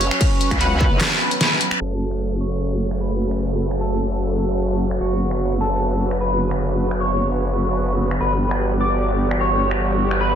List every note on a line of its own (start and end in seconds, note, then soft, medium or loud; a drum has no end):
0.00 1.77 F#3 medium
0.00 0.53 C#4 medium
0.00 1.77 C#4 medium
0.00 1.79 B4 medium
0.00 0.53 C#5 medium
0.00 open hi-hat loud
0.11 finger snap medium
0.21 kick loud
0.21 closed hi-hat medium
0.21 ride medium
0.41 closed hi-hat medium
0.51 0.90 C#2 loud
0.51 finger snap medium
0.51 kick medium
0.51 closed hi-hat medium
0.60 1.73 B3 medium
0.60 0.78 F#4 medium
0.60 1.73 B4 medium
0.60 0.78 C#5 medium
0.60 0.78 F#5 medium
0.60 closed hi-hat medium
0.60 ride soft
0.81 0.86 F#4 medium
0.81 0.86 C#5 medium
0.81 0.86 F#5 medium
0.81 kick loud
0.91 1.01 F#1 loud
1.01 snare loud
1.01 clap medium
1.01 closed hi-hat medium
1.01 ride medium
1.31 closed hi-hat medium
1.41 snare medium
1.41 closed hi-hat medium
1.41 ride soft
1.61 open hi-hat loud
1.71 finger snap medium
1.81 4.99 F#1 medium
1.81 4.97 C#3 medium
1.81 8.17 F#3 medium
1.81 4.97 A3 medium
1.81 8.17 F#4 medium
1.81 2.33 A4 medium
1.81 4.97 A4 medium
1.81 crash medium
1.81 downlifter medium
2.11 finger snap medium
2.41 2.93 C#5 medium
2.91 finger snap medium
3.01 3.73 B4 medium
3.31 finger snap medium
3.71 finger snap medium
3.81 4.93 A4 medium
4.91 finger snap medium
5.01 8.19 F#1 medium
5.01 8.18 D3 medium
5.01 10.35 B3 medium
5.01 5.53 F#4 medium
5.01 8.18 B4 medium
5.31 finger snap medium
5.61 6.13 A4 medium
6.11 finger snap medium
6.21 6.93 B4 medium
6.51 finger snap medium
6.91 finger snap medium
7.01 8.13 C#5 medium
8.11 finger snap medium
8.21 10.35 G1 medium
8.21 10.35 E3 medium
8.21 10.35 G3 medium
8.21 10.35 F#4 medium
8.21 10.35 G4 medium
8.21 8.73 B4 medium
8.51 finger snap medium
8.81 9.33 D5 medium
9.31 finger snap medium
9.41 10.13 C#5 medium
9.71 finger snap medium
10.11 finger snap medium
10.21 10.35 B4 medium